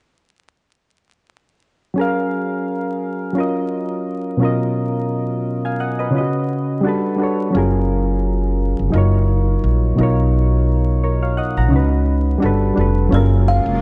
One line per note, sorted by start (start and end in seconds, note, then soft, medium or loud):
1.94 3.10 F#3 medium
1.94 3.11 C#4 medium
1.94 3.12 G#4 medium
1.99 3.13 A#4 medium
1.99 3.13 F5 medium
3.33 4.22 F#3 medium
3.33 4.23 C#4 medium
3.33 4.23 F4 medium
3.38 4.24 A#4 medium
3.38 4.25 D#5 medium
4.37 5.54 B2 medium
4.37 5.54 F#3 medium
4.37 5.55 C#4 medium
4.42 5.56 F4 medium
4.42 5.12 A#4 medium
4.42 5.13 D#5 medium
5.65 5.80 F5 soft
5.65 5.80 G#5 medium
5.80 5.98 D#5 medium
5.80 5.99 F#5 medium
5.99 6.15 B4 medium
5.99 6.17 D#5 medium
6.11 6.83 C#3 medium
6.11 6.84 C#4 medium
6.15 6.22 F4 medium
6.15 6.86 B4 medium
6.15 6.87 D#5 medium
6.21 6.83 F#4 medium
6.81 7.12 G3 medium
6.81 7.13 D4 medium
6.81 7.14 F#4 medium
6.87 7.15 A4 medium
6.87 7.16 B4 medium
7.16 7.47 G3 medium
7.16 7.48 D4 medium
7.16 7.49 F#4 medium
7.22 7.50 A4 medium
7.22 7.51 C#5 medium
7.51 8.67 F#3 medium
7.51 8.68 C#4 medium
7.51 8.69 F4 medium
7.55 8.75 F#1 loud
7.55 8.70 G#4 medium
7.55 8.71 A#4 medium
8.79 8.93 F1 medium
8.90 9.55 F#1 loud
8.90 9.79 F#3 medium
8.90 9.80 D#4 medium
8.90 9.81 F4 medium
8.96 9.82 A#4 medium
8.96 9.83 C#5 medium
9.64 9.94 A#1 medium
9.95 11.37 B1 medium
9.95 11.12 B2 medium
9.95 11.13 F#3 medium
9.95 11.13 D#4 medium
10.00 11.14 F4 medium
10.00 11.03 A#4 medium
10.00 11.02 C#5 medium
11.04 11.23 A#4 soft
11.04 11.22 C#5 medium
11.23 11.38 C#5 medium
11.23 11.38 F5 medium
11.37 11.57 D#5 medium
11.37 11.57 F#5 medium
11.57 11.73 A#1 medium
11.57 11.91 F#5 medium
11.57 11.91 A#5 medium
11.68 12.41 C#3 medium
11.68 12.42 C#4 medium
11.68 12.43 D#4 medium
11.73 12.34 C#2 medium
11.73 12.41 F#4 medium
11.73 12.45 B4 medium
12.38 12.70 G3 medium
12.38 12.71 D4 medium
12.38 12.72 F#4 medium
12.42 12.73 G1 medium
12.42 12.73 A4 medium
12.42 12.74 B4 medium
12.74 13.08 F1 medium
12.74 13.05 G3 medium
12.74 13.06 D4 medium
12.74 13.07 F#4 medium
12.79 13.08 A4 medium
12.79 13.09 B4 medium
13.09 13.60 F#1 loud
13.09 13.81 F#3 medium
13.09 13.81 C#4 medium
13.09 13.81 F4 medium
13.13 13.81 F#3 medium
13.13 13.81 G#3 medium
13.13 13.81 A#3 medium
13.13 13.81 F4 medium
13.13 13.81 G#4 medium
13.13 13.81 A#4 medium
13.13 13.50 C#5 loud
13.48 13.81 F5 medium
13.66 13.81 F1 medium